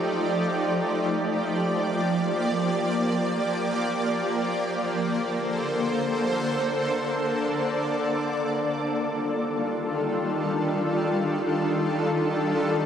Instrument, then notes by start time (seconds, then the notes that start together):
ambient pad
Already playing: F3 A3 D#4 G4 D5
0.90 A#3 D5
4.77 D3 A4 C5
6.71 D5
8.64 D#3 G3 D4 F4 A4